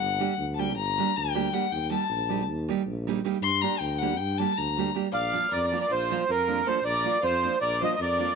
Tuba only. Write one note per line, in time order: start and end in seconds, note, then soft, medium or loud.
0.00 0.24 G1 medium
0.38 0.79 D2 medium
0.78 1.01 G1 medium
1.17 1.50 D2 medium
1.71 1.95 D#2 medium
2.10 2.51 A#1 medium
2.49 2.72 D#2 loud
2.87 3.19 A#1 medium
3.41 3.65 G2 loud
3.81 4.20 D2 loud
4.19 4.42 G2 medium
4.58 4.90 D2 medium
5.13 5.36 A#1 medium
5.52 5.75 F2 medium
5.90 6.13 A#1 medium
6.29 6.62 F2 medium
6.84 7.07 A#1 medium
7.23 7.46 F2 loud
7.62 7.84 A#1 medium
7.99 8.32 F2 loud